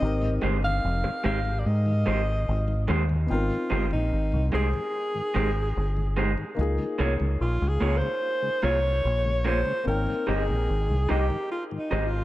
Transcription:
Already playing: alto saxophone D#5
0.00 fingered electric bass G#1, grand piano C4 D#4 G4
0.04 grand piano A#4
0.22 tonewheel organ G#2 D#3
0.41 fingered electric bass G1, tonewheel organ G#3 C4 G4, clean electric guitar G#3 D#4 G4 C5
0.63 tonewheel organ G#2 D#3, alto saxophone F5
0.84 fingered electric bass F1
1.04 tonewheel organ G#2 D#3, muted clean electric guitar stroke
1.24 fingered electric bass G#1, clean electric guitar G#3 D#4 G4 C5, tonewheel organ G#3 C4 G4, alto saxophone F5
1.45 tonewheel organ G#2 D#3
1.59 alto saxophone D5
1.66 fingered electric bass G#2, alto saxophone D#5
1.86 tonewheel organ G#2 D#3
2.06 fingered electric bass G#1, clean electric guitar G#3 D#4 G4 C5, tonewheel organ G#3 C4 G4
2.49 fingered electric bass G#1
2.68 tonewheel organ G#2 D#3
2.88 fingered electric bass D#2, clean electric guitar G#3 D#4 G4 C5, tonewheel organ G#3 C4 G4
3.09 tonewheel organ G#2 D#3
3.26 grand piano B3 D#4 G5
3.31 fingered electric bass G#1, grand piano C4 A#4, alto saxophone F4
3.50 tonewheel organ G#2 D#3
3.70 fingered electric bass G1, tonewheel organ G#3 C4 G4, clean electric guitar G#3 D#4 G4 C5
3.91 fingered electric bass A#1, tonewheel organ G#2 D#3, alto saxophone D#4
4.13 fingered electric bass G#1
4.32 fingered electric bass C2, tonewheel organ G#2 D#3
4.52 fingered electric bass C2, tonewheel organ G#3 C4 G4, clean electric guitar G#3 D#4 G4 C5, alto saxophone G#4
4.73 tonewheel organ G#2 D#3
5.14 tonewheel organ G#2 D#3
5.34 fingered electric bass G#1, clean electric guitar G#3 D#4 G4 C5, tonewheel organ G#3 C4 G4
5.77 fingered electric bass G1
5.97 tonewheel organ G#2 D#3
6.17 clean electric guitar G#3 D#4 G4 C5, tonewheel organ G#3 C4 G4
6.38 tonewheel organ G#2 D#3
6.55 fingered electric bass C#2, grand piano A#3 D#4 F4
6.61 grand piano G#4
6.79 tonewheel organ C#3 G#3
6.98 fingered electric bass C2, tonewheel organ A#3 C#4 F4, clean electric guitar A#3 F4 G#4 C#5
7.20 fingered electric bass C#2, tonewheel organ C#3 G#3
7.41 fingered electric bass A#1, alto saxophone F4
7.61 fingered electric bass C#2, tonewheel organ C#3 G#3
7.69 alto saxophone G#4
7.80 fingered electric bass C#2, tonewheel organ A#3 C#4 F4, clean electric guitar A#3 F4 G#4 C#5
7.97 alto saxophone C5
8.02 tonewheel organ C#3 G#3
8.42 tonewheel organ C#3 G#3
8.62 fingered electric bass C2, tonewheel organ A#3 C#4 F4, clean electric guitar A#3 F4 G#4 C#5, alto saxophone C#5
9.05 fingered electric bass A#1
9.25 tonewheel organ C#3 G#3
9.44 tonewheel organ A#3 C#4 F4, clean electric guitar A#3 F4 G#4 C#5, alto saxophone C5
9.65 tonewheel organ C#3 G#3
9.84 fingered electric bass G#1, grand piano A#3 C4 D#4, alto saxophone A#4
9.89 grand piano G5
10.07 tonewheel organ G#2 D#3
10.26 fingered electric bass G1, tonewheel organ G#3 C4 G4, clean electric guitar D#4 G4 C5 D#5, alto saxophone G#4
10.48 fingered electric bass A#1, tonewheel organ G#2 D#3
10.70 fingered electric bass G#1
10.89 fingered electric bass C2, tonewheel organ G#2 D#3
11.09 fingered electric bass C2, tonewheel organ G#3 C4 G4, clean electric guitar D#4 G4 C5 D#5, alto saxophone G4
11.30 tonewheel organ G#2 D#3
11.52 alto saxophone F4
11.71 tonewheel organ G#2 D#3
11.79 alto saxophone D#4
11.91 fingered electric bass G#1, tonewheel organ G#3 C4 G4, clean electric guitar D#4 G4 C5 D#5
12.06 alto saxophone F4

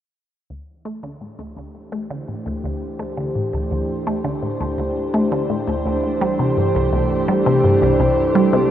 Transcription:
0.50 synth arpeggio sound D2, ambient pad E3
0.65 ambient pad A3
0.82 synth arpeggio sound A3, ambient pad D4
0.97 ambient pad G4
1.03 synth arpeggio sound D3
1.20 synth arpeggio sound A2, ambient pad C5
1.39 synth arpeggio sound D2
1.57 synth arpeggio sound D2
1.92 synth arpeggio sound A3
2.11 synth arpeggio sound D3
2.28 synth arpeggio sound A2
2.46 synth arpeggio sound D2
2.64 synth arpeggio sound D2
2.99 synth arpeggio sound A3
3.17 synth arpeggio sound D3
3.35 synth arpeggio sound A2
3.53 synth arpeggio sound D2
3.71 synth arpeggio sound D2
4.07 synth arpeggio sound A3
4.25 synth arpeggio sound D3
4.43 synth arpeggio sound A2
4.60 synth arpeggio sound D2
4.78 synth arpeggio sound D2
5.14 synth arpeggio sound A3
5.32 synth arpeggio sound D3
5.50 synth arpeggio sound A2
5.67 synth arpeggio sound D2
5.85 synth arpeggio sound D2
6.21 synth arpeggio sound G3
6.39 synth arpeggio sound C3
6.57 synth arpeggio sound G2
6.75 synth arpeggio sound C2
6.93 synth arpeggio sound C2
7.28 synth arpeggio sound G3
7.46 synth arpeggio sound C3
7.64 synth arpeggio sound G2
7.82 synth arpeggio sound C2
8.00 synth arpeggio sound C2
8.35 synth arpeggio sound G3
8.53 synth arpeggio sound C3

